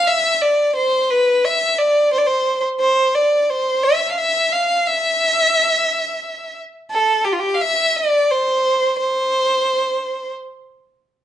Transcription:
0.07 E5
0.42 D5
0.75 C5
1.10 B4
1.45 E5
1.78 D5
2.12 C5
2.18 D5
2.26 C5
2.81 C5
3.15 D5
3.42 D5
3.50 C5
3.83 E5
4.11 F5
4.18 E5
4.52 F5
4.87 E5
6.91 A4
7.25 G4
7.33 F4
7.40 G4
7.54 F5
7.61 E5
7.96 D5
8.31 C5
8.98 C5

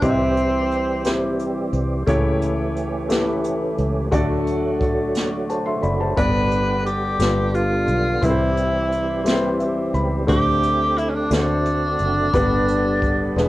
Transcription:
0.01 C2 C3 E3 G3 C4 E4 G4 D#5, kick, closed hi-hat
0.10 E5
0.37 closed hi-hat
0.71 closed hi-hat
1.04 C4 E4 G4 C5, snare, closed hi-hat
1.39 closed hi-hat
1.73 C2, closed hi-hat
2.07 C#2 C#3 E3 A3 C#4 E4 G4 C#5, kick, closed hi-hat
2.42 closed hi-hat
2.76 closed hi-hat
3.09 A3 E4 G4 B4, snare, closed hi-hat
3.44 closed hi-hat
3.78 C#2, closed hi-hat
4.11 D2 D3 F#3 A3 D4 F#4 D5, kick, closed hi-hat
4.47 closed hi-hat
4.81 kick, closed hi-hat
5.15 snare, closed hi-hat
5.49 C5 A5, closed hi-hat
5.66 E5 C6
5.82 F#1 D5 B5, closed hi-hat
6.00 C5 A5
6.17 G1 G2 D3 G3 B3 D4 G4 B4 D5, kick, closed hi-hat
6.51 closed hi-hat
6.86 G4, closed hi-hat
7.19 G1 G2 D3 G3 B3 D4 F4 B4, snare, closed hi-hat
7.54 F4, closed hi-hat
7.87 B1, closed hi-hat
8.22 C2 C3 E3 G3 C4 E4 G4 B4, kick, closed hi-hat
8.30 C5
8.57 closed hi-hat
8.92 closed hi-hat
9.24 G3 C4 E4 B4, snare, closed hi-hat
9.32 C5
9.60 E5, closed hi-hat
9.94 C#2 B5, closed hi-hat
10.27 D2 D3 A3 C4 D4 G4 C5, kick, closed hi-hat
10.63 closed hi-hat
10.98 E4, closed hi-hat
11.09 C#4
11.15 D4
11.30 D2 D3 A3 C4 D4 F4 F#4 B4, snare, closed hi-hat
11.38 F#4 C5
11.65 closed hi-hat
11.99 F#1, closed hi-hat
12.33 G1 G2 D3 G3 A#3 B3 D4 G4 B4, kick, closed hi-hat
12.40 B3
12.68 closed hi-hat
13.02 kick, closed hi-hat
13.36 E1 E3 G#3 B3 D4 E4 G#4 B4, snare

